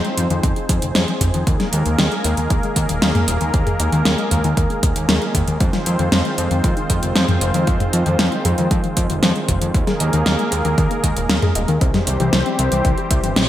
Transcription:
Already playing: F3 C4 D#4 G#4 C5
0.05 G#3, closed hi-hat
0.17 F2 F3, closed hi-hat, mid tom
0.30 F2 D#3, closed hi-hat
0.43 F2 D#3, kick, closed hi-hat
0.56 D#4, closed hi-hat
0.69 F2 G#4, kick, closed hi-hat
0.82 F1 D#3, closed hi-hat
0.95 F2 G#3, snare, closed hi-hat
1.08 F3, closed hi-hat
1.21 F1 F4, kick, closed hi-hat, mid tom
1.34 F2 D#3, closed hi-hat
1.47 D#2 D#3 G#3 A#3 A#4, kick, closed hi-hat
1.60 A#3, snare, closed hi-hat
1.73 D#2 G#3, closed hi-hat
1.86 D#2 D#3, closed hi-hat
1.99 D#2 D#3, snare, closed hi-hat
2.12 G#4, closed hi-hat
2.24 D#2 D#5, closed hi-hat
2.37 D#2 D#3, closed hi-hat
2.50 D#2 A#3, kick, closed hi-hat
2.63 G#3, closed hi-hat
2.76 D#2 A#4, kick, closed hi-hat
2.89 D#1 D#3, closed hi-hat
3.02 D#2, snare, closed hi-hat
3.15 A#3, closed hi-hat, mid tom
3.28 D#1 G#3, closed hi-hat
3.41 D#2 D#3, closed hi-hat
3.54 D#2 D#3, kick, closed hi-hat
3.67 G#4, closed hi-hat, mid tom
3.80 D#2 D#5, closed hi-hat
3.92 D#2 D#3, closed hi-hat
4.05 D#2 A#3, snare, closed hi-hat
4.18 G#3, closed hi-hat
4.31 D#2 A#4, closed hi-hat, mid tom
4.44 D#2 D#3, closed hi-hat
4.57 D#2 D#3, kick, closed hi-hat
4.70 A#3, closed hi-hat
4.83 D#1 G#3, kick, closed hi-hat
4.96 D#2 D#3, closed hi-hat
5.09 D#2 D#3, snare, closed hi-hat
5.22 G#4, closed hi-hat
5.35 D#2 D#5, kick, closed hi-hat, mid tom
5.48 D#2 D#3, closed hi-hat
5.60 F2 G#3 C4 F4 C5, kick, closed hi-hat
5.73 F3, snare, closed hi-hat
5.86 F2 F4, closed hi-hat
5.99 F2 D#3, closed hi-hat
6.12 F2 D#3, snare, closed hi-hat
6.25 G#3, closed hi-hat
6.38 F2 F3, closed hi-hat
6.51 F2 D#3, closed hi-hat
6.64 F2 D#3, kick, closed hi-hat
6.77 D#4, closed hi-hat
6.90 F2 G#4, kick, closed hi-hat
7.03 F1 D#3, closed hi-hat
7.16 F2 G#3, snare, closed hi-hat
7.28 F3, closed hi-hat, mid tom
7.41 F1 F4, closed hi-hat
7.54 F2 D#3, closed hi-hat
7.67 F2 D#3, kick, closed hi-hat
7.80 G#3, closed hi-hat, mid tom
7.93 F2 F3, closed hi-hat
8.06 F2 D#3, closed hi-hat
8.19 F2 D#3, snare, closed hi-hat
8.32 D#4, closed hi-hat
8.45 F2 G#4, closed hi-hat, mid tom
8.58 F2 D#3, closed hi-hat
8.71 F2 G#3, kick, closed hi-hat
8.84 F3, closed hi-hat
8.97 F2 F4, kick, closed hi-hat
9.10 F1 D#3, closed hi-hat
9.23 F2 D#3, snare, closed hi-hat
9.36 G#3, closed hi-hat
9.48 F1 F3, kick, closed hi-hat, mid tom
9.62 F2 D#3, closed hi-hat
9.74 D#2 D#3 A#3 G#4 A#4, kick, closed hi-hat
9.87 G#4, snare, closed hi-hat
10.00 D#2 D#5, closed hi-hat
10.13 D#2 D#3, closed hi-hat
10.26 D#2 A#3, snare, closed hi-hat
10.39 G#3, closed hi-hat
10.52 D#2 A#4, closed hi-hat
10.65 D#2 D#3, closed hi-hat
10.78 D#2 D#3, kick, closed hi-hat
10.91 A#3, closed hi-hat
11.04 D#2 G#3, kick, closed hi-hat
11.17 D#1 D#3, closed hi-hat
11.30 D#2 D#3, snare, closed hi-hat
11.42 G#4, closed hi-hat, mid tom
11.55 D#1 D#5, closed hi-hat
11.68 D#2 D#3, closed hi-hat
11.81 C2 E3 G3 C4 G4 C5, kick, closed hi-hat
11.94 G3, snare, closed hi-hat, mid tom
12.07 C2 C5, closed hi-hat
12.20 C2 E3, closed hi-hat
12.33 C2 E3, snare, closed hi-hat
12.46 C4, closed hi-hat
12.59 C2 G3, closed hi-hat
12.72 C2 E3, closed hi-hat
12.85 C2 E3, kick, closed hi-hat
12.98 G4, closed hi-hat
13.11 C2 E5, kick, closed hi-hat
13.24 G1 E3, closed hi-hat
13.36 A#1 C4, snare, closed hi-hat

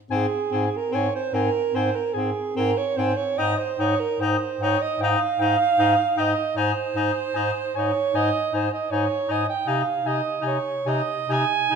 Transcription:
0.11 G#2 C4 G#4 G#5
0.49 G#2 C4
0.54 G#5
0.77 A#4
0.91 G#2 C4 C#5 G#5
1.15 C5
1.33 G#2 C4 A#4 G#5
1.74 G#2 C4 C5 G#5
1.96 A#4
2.14 G#2 C4 G#4 G#5
2.56 G#2 C4 A#4 G#5
2.78 C#5
2.96 G#2 C4 C5 G#5
3.17 C#5
3.38 G#2 D#4 D#5 G5
3.58 C5
3.79 G#2 D#4 C#5 G5
4.00 A#4
4.20 G#2 D#4 C5 G5
4.60 G#2 D#4 C#5 G5
4.82 D#5
5.00 G#2 D#4 F5 G5
5.39 G#2 D#4 G5
5.77 G#2 D#4 G5
6.17 G#2 D#4 D#5 G5
6.56 G#2 D#4 C5 G#5
6.95 G#2 D#4 G#5
7.34 G#2 D#4 G#5
7.75 G#2 D#4 C#5 G#5
8.14 G#2 D#4 D#5 G#5
8.53 G#2 D#4 C5 G#5
8.73 D#5
8.90 G#2 D#4 C#5 G#5
9.28 G#2 D#4 D#5 G#5
9.49 G5
9.66 C3 D#4 F5 G#5
10.05 C3 D#4 D#5 G#5
10.41 C3 D#4 G#5
10.47 C#5
10.85 C3 D#4 D#5 G#5
11.29 C3 D#4 G#5
11.33 G#5
11.69 C3 D#4 G#5

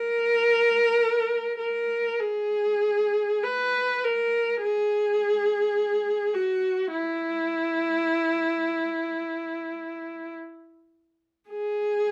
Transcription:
Already playing: A#4
1.59 A#4
2.20 G#4
3.43 B4
4.04 A#4
4.62 G#4
6.34 F#4
6.91 E4
11.49 G#4

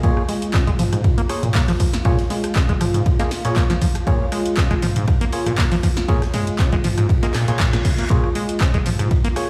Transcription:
0.03 A#2 A#3 F4 G#4 C#5, kick, ride
0.17 cross-stick
0.29 G#3, open hi-hat, ride
0.42 closed hi-hat
0.54 C#4, kick, cross-stick, snare, clap, ride
0.67 G#3, kick, closed hi-hat
0.79 F3, snare, mid tom, open hi-hat, ride
0.93 G#2, cross-stick, closed hi-hat, mid tom
1.04 kick, ride
1.18 A#3, closed hi-hat
1.29 A#3 F4 G#4 C#5, cross-stick, open hi-hat, ride
1.43 A#2, closed hi-hat, mid tom
1.54 A#3, kick, snare, clap, open hi-hat
1.68 F3, cross-stick, snare, closed hi-hat
1.80 F3, kick, open hi-hat, ride
1.93 snare, closed hi-hat
2.05 A#2 A#3 F4 G#4 C#5, kick, cross-stick, ride
2.18 snare, closed hi-hat
2.30 G#3, snare, open hi-hat, ride
2.44 cross-stick, closed hi-hat
2.55 C#4, kick, snare, clap, ride
2.69 G#3, kick, closed hi-hat
2.81 F3, cross-stick, mid tom, open hi-hat, ride
2.94 G#2, closed hi-hat, mid tom
3.06 kick, ride
3.19 A#3 F4 G#4 D#5, cross-stick, snare, closed hi-hat
3.31 snare, open hi-hat, ride
3.45 A#2 A#3 F4 G#4 C#5, snare, closed hi-hat
3.56 A#3, kick, cross-stick, snare, clap, ride
3.70 F3, snare, closed hi-hat
3.82 F3, kick, open hi-hat, ride
3.95 cross-stick, closed hi-hat, ride
4.07 A#2 A#3 F4 G#4 C#5, kick, ride
4.32 G#3, cross-stick, open hi-hat, ride
4.46 closed hi-hat
4.57 C#4, kick, snare, clap, ride
4.71 G#3, kick, cross-stick, closed hi-hat
4.82 F3, snare, mid tom, open hi-hat, ride
4.96 G#2, closed hi-hat, mid tom
5.07 kick, cross-stick, ride
5.21 A#3, closed hi-hat
5.32 A#3 F4 G#4 C#5, open hi-hat, ride
5.46 A#2, cross-stick, closed hi-hat, mid tom
5.58 A#3, kick, snare, clap, open hi-hat
5.72 F3, snare, closed hi-hat
5.83 F3, kick, cross-stick, open hi-hat, ride
5.97 snare, closed hi-hat
6.08 A#2 A#3 F4 G#4 C#5, kick, ride
6.22 cross-stick, snare, closed hi-hat
6.33 G#3, snare, mid tom, open hi-hat, ride
6.47 closed hi-hat
6.59 C#4, kick, cross-stick, snare, clap, ride
6.72 G#3, kick, closed hi-hat
6.84 F3, snare, mid tom, open hi-hat, ride
6.98 G#2, cross-stick, closed hi-hat, mid tom
7.09 kick, ride, reverse cymbal
7.23 A#3 F4 G#4 D#5, snare, closed hi-hat
7.34 A#2, cross-stick, snare, clap, open hi-hat, ride
7.48 A#2 A#3 F4 G#4 C#5, snare, closed hi-hat
7.60 A#2, kick, snare, clap, ride
7.73 A#2, cross-stick, snare, closed hi-hat
7.85 C#3, kick, snare, open hi-hat, ride
7.98 A#3, closed hi-hat
8.10 A#2 A#3 F4 G#4 C#5, kick, ride
8.24 cross-stick
8.35 G#3, open hi-hat, ride
8.49 closed hi-hat
8.60 C#4, kick, cross-stick, snare, clap, ride
8.74 G#3, kick, closed hi-hat
8.86 F3, snare, mid tom, open hi-hat, ride
8.99 G#2, cross-stick, closed hi-hat, mid tom
9.11 kick, ride
9.24 A#3, closed hi-hat
9.36 A#3 F4 G#4 C#5, cross-stick, open hi-hat, ride

